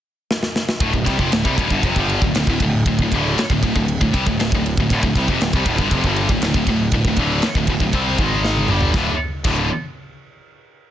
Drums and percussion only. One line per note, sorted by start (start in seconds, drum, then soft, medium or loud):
0.31 snare medium
0.43 snare medium
0.56 snare medium
0.69 snare loud
0.80 kick loud
0.80 ride loud
0.93 kick medium
1.06 kick medium
1.06 snare soft
1.06 ride medium
1.19 kick medium
1.32 snare loud
1.32 ride loud
1.45 kick loud
1.58 kick medium
1.58 ride medium
1.70 kick medium
1.83 kick loud
1.83 ride loud
1.96 kick medium
2.10 ride medium
2.22 kick medium
2.35 snare loud
2.35 ride loud
2.47 kick loud
2.60 kick medium
2.60 ride medium
2.86 kick loud
2.86 ride loud
2.99 kick medium
3.12 kick medium
3.12 ride medium
3.38 snare loud
3.38 ride loud
3.50 kick medium
3.63 kick medium
3.63 ride medium
3.76 kick medium
3.88 ride loud
4.01 kick medium
4.14 kick medium
4.14 ride medium
4.27 kick medium
4.40 snare loud
4.40 ride loud
4.52 kick medium
4.66 ride medium
4.77 kick loud
4.90 kick loud
4.90 ride loud
5.03 kick medium
5.15 kick medium
5.15 snare soft
5.15 ride medium
5.28 kick medium
5.41 snare loud
5.41 ride loud
5.53 kick loud
5.66 kick medium
5.66 ride medium
5.78 kick medium
5.91 kick loud
5.91 ride loud
6.04 kick medium
6.16 ride medium
6.29 kick medium
6.42 snare loud
6.42 ride loud
6.54 kick medium
6.67 kick medium
6.67 ride medium
6.92 kick loud
6.92 ride loud
7.05 kick medium
7.16 kick medium
7.16 ride medium
7.42 snare loud
7.42 ride loud
7.55 kick medium
7.67 kick medium
7.67 ride medium
7.80 kick medium
7.93 kick loud
7.93 ride loud
8.18 kick loud
8.18 ride medium
8.45 snare medium
8.56 high tom medium
8.68 mid tom medium
8.81 floor tom loud
8.94 kick loud
8.94 snare medium
9.44 kick loud
9.44 crash medium